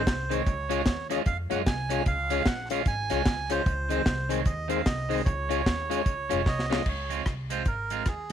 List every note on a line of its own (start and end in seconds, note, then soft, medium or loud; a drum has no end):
0.00 0.33 C5 loud
0.07 0.41 C2 loud
0.07 kick loud
0.07 snare loud
0.07 closed hi-hat medium
0.29 0.41 D#3 medium
0.29 0.41 G#3 medium
0.29 0.42 C4 medium
0.29 0.42 D#4 medium
0.29 0.42 G#4 medium
0.29 0.43 C5 medium
0.29 1.07 C#5 loud
0.29 closed hi-hat loud
0.46 0.81 C#2 loud
0.46 kick loud
0.46 closed hi-hat medium
0.69 0.81 G#3 medium
0.69 0.82 C#4 medium
0.69 0.81 C#4 medium
0.69 0.82 F4 medium
0.69 0.82 G#4 medium
0.69 0.82 C#5 loud
0.69 closed hi-hat medium
0.86 1.20 D#2 medium
0.86 kick loud
0.86 snare loud
0.86 closed hi-hat medium
1.10 1.21 G#3 medium
1.10 1.22 C#4 loud
1.10 1.21 C#4 medium
1.10 1.22 F4 medium
1.10 1.23 G#4 medium
1.10 1.23 C#5 loud
1.10 1.18 D#5 medium
1.10 closed hi-hat loud
1.26 1.47 F2 loud
1.26 1.37 F5 loud
1.26 kick loud
1.26 closed hi-hat medium
1.50 1.64 F#2 medium
1.50 1.61 G#3 medium
1.50 1.62 C#4 medium
1.50 1.61 C#4 medium
1.50 1.62 F4 medium
1.50 1.62 G#4 medium
1.50 1.63 C#5 medium
1.50 1.58 F#5 medium
1.50 closed hi-hat medium
1.66 2.01 C2 medium
1.66 2.04 G#5 loud
1.66 kick loud
1.66 snare loud
1.66 closed hi-hat medium
1.89 2.01 G#3 medium
1.89 2.02 C#4 medium
1.89 2.01 C#4 medium
1.89 2.03 F4 medium
1.89 2.02 F4 medium
1.89 2.03 G#4 medium
1.89 2.03 C#5 loud
1.89 closed hi-hat medium
2.06 2.41 C#2 loud
2.06 2.48 F5 loud
2.06 kick loud
2.06 closed hi-hat medium
2.30 2.41 G#3 medium
2.30 2.42 C#4 medium
2.30 2.43 F4 medium
2.30 2.42 F4 loud
2.30 2.43 G#4 medium
2.30 2.43 C#5 loud
2.30 closed hi-hat medium
2.46 2.80 A#1 loud
2.46 2.69 F#5 loud
2.46 kick loud
2.46 snare loud
2.46 closed hi-hat medium
2.70 2.81 G#3 medium
2.70 2.82 C#4 medium
2.70 2.82 F4 medium
2.70 2.82 G#4 medium
2.70 2.83 C#5 loud
2.70 2.87 F5 medium
2.70 closed hi-hat loud
2.86 3.07 G#1 medium
2.86 3.53 G#5 loud
2.86 kick loud
2.86 closed hi-hat medium
3.10 3.24 C2 medium
3.10 3.21 G#3 medium
3.10 3.22 C#4 medium
3.10 3.21 C#4 loud
3.10 3.22 F4 medium
3.10 3.22 F4 loud
3.10 3.23 G#4 medium
3.10 3.23 C#5 loud
3.10 closed hi-hat medium
3.25 3.60 C#2 medium
3.25 kick loud
3.25 snare loud
3.25 closed hi-hat medium
3.50 3.61 G#3 medium
3.50 3.62 C#4 medium
3.50 3.61 C#4 medium
3.50 3.62 F4 medium
3.50 3.62 G#4 medium
3.50 4.33 C5 loud
3.50 3.63 C#5 loud
3.50 closed hi-hat loud
3.66 4.00 C#2 loud
3.66 kick loud
3.66 closed hi-hat medium
3.89 4.00 D#3 medium
3.89 4.01 G#3 medium
3.89 4.02 C4 medium
3.89 4.02 C4 loud
3.89 4.02 D#4 medium
3.89 4.02 G#4 medium
3.89 4.03 C5 loud
3.89 closed hi-hat medium
4.06 4.40 C2 medium
4.06 kick loud
4.06 snare loud
4.06 closed hi-hat medium
4.29 4.41 D#3 medium
4.29 4.41 G#3 medium
4.29 4.41 C4 medium
4.29 4.42 C4 medium
4.29 4.42 D#4 medium
4.29 4.42 G#4 medium
4.29 4.42 C5 loud
4.29 4.47 C#5 medium
4.29 closed hi-hat medium
4.46 4.80 D#2 loud
4.46 4.68 D#5 loud
4.46 kick loud
4.46 closed hi-hat medium
4.68 4.80 D#3 medium
4.68 4.80 G#3 medium
4.68 4.81 C4 medium
4.68 4.82 D#4 medium
4.68 4.82 G#4 medium
4.68 4.82 C5 loud
4.68 4.87 F5 medium
4.68 closed hi-hat medium
4.86 5.20 C2 medium
4.86 5.23 D#5 loud
4.86 kick loud
4.86 snare loud
4.86 closed hi-hat medium
5.09 5.20 D#3 medium
5.09 5.21 G#3 medium
5.09 5.22 C4 loud
5.09 5.21 C4 medium
5.09 5.22 D#4 medium
5.09 5.22 G#4 medium
5.09 5.22 C5 loud
5.09 open hi-hat medium
5.25 5.60 C#2 loud
5.25 6.66 C#5 loud
5.25 kick loud
5.25 closed hi-hat medium
5.49 5.60 G#3 medium
5.49 5.62 C#4 medium
5.49 5.61 C#4 medium
5.49 5.62 F4 medium
5.49 5.61 F4 medium
5.49 5.62 G#4 medium
5.49 5.62 C#5 loud
5.49 closed hi-hat medium
5.66 6.00 D#2 loud
5.66 kick loud
5.66 snare loud
5.66 closed hi-hat medium
5.90 6.01 G#3 medium
5.90 6.02 C#4 medium
5.90 6.01 C#4 medium
5.90 6.02 F4 medium
5.90 6.02 F4 loud
5.90 6.02 G#4 medium
5.90 6.02 C#5 loud
5.90 closed hi-hat loud
6.06 6.27 C#2 medium
6.06 kick loud
6.06 closed hi-hat medium
6.29 6.44 F1 medium
6.29 6.40 G#3 medium
6.29 6.42 C#4 medium
6.29 6.41 C#4 medium
6.29 6.42 F4 medium
6.29 6.41 F4 loud
6.29 6.42 G#4 medium
6.29 6.42 C#5 loud
6.29 closed hi-hat medium
6.46 6.80 C2 medium
6.46 6.88 D#5 loud
6.46 kick loud
6.46 snare medium
6.59 snare medium
6.70 6.81 G#3 medium
6.70 6.82 C#4 medium
6.70 6.81 C#4 medium
6.70 6.82 F4 medium
6.70 6.81 F4 medium
6.70 6.82 G#4 medium
6.70 6.83 C#5 loud
6.70 snare loud
6.86 7.20 C#2 loud
6.86 7.25 C#5 loud
6.86 kick loud
6.86 crash medium
7.09 7.21 G#3 medium
7.09 7.21 C4 medium
7.09 7.22 F4 medium
7.09 closed hi-hat medium
7.26 7.60 C2 medium
7.26 kick medium
7.26 cross-stick loud
7.26 closed hi-hat medium
7.50 7.61 G#3 medium
7.50 7.62 C4 medium
7.50 7.62 F4 medium
7.50 7.67 C5 medium
7.50 closed hi-hat medium
7.65 8.00 G#1 medium
7.65 8.08 A#4 medium
7.65 kick medium
7.65 closed hi-hat medium
7.90 8.01 G#3 medium
7.90 8.02 C4 medium
7.90 8.02 F4 medium
7.90 closed hi-hat medium
8.06 8.27 D#2 medium
8.06 8.32 G#4 medium
8.06 kick loud
8.06 cross-stick medium
8.06 closed hi-hat medium